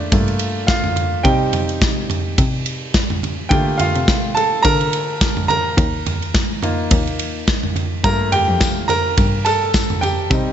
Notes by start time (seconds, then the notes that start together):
Already playing: A3 A#3 D4 F4 D5 F5
0.12 G2 A3 A#3 F4, kick, ride
0.28 ride
0.39 ride
0.67 F4 F5, kick, snare, ride
0.84 floor tom
0.96 floor tom, ride
1.23 C3 G3 C4 D#4 G4 G5, kick, ride
1.53 floor tom, ride
1.69 ride
1.82 kick, snare, ride
2.10 floor tom, ride
2.38 C3, kick, ride
2.66 ride
2.94 kick, snare, ride
3.10 floor tom
3.23 floor tom, ride
3.49 D3 A3 A#3 F4 G4 G5, kick, ride
3.78 F4 F5, floor tom, ride
3.95 C3, ride
4.08 kick, snare, ride
4.35 A4 A5, ride
4.63 D3 A#4 A#5, kick, ride
4.81 ride
4.93 ride
5.21 kick, snare, ride
5.37 floor tom
5.48 A#4 A#5, floor tom, ride
5.78 D#2, kick, ride
6.06 floor tom, ride
6.22 ride
6.34 kick, snare, ride
6.63 A#3 D#4 F4, floor tom, ride
6.91 D#2, kick, ride
7.07 ride
7.19 ride
7.48 kick, snare, ride
7.63 floor tom
7.76 floor tom, ride
8.04 G2 A3 A#3 F4 A#4 A#5, kick, ride, tambourine
8.32 G4 G5, floor tom, ride
8.48 F2
8.61 kick, snare, ride, tambourine
8.88 A#4 A#5, floor tom, ride, tambourine
9.17 G2, kick, ride, tambourine
9.45 A4 A5, ride, tambourine
9.74 kick, snare, ride, tambourine
9.90 floor tom
10.01 G4 G5, floor tom, ride, tambourine
10.30 C3 G3 C4 D#4, kick, ride, tambourine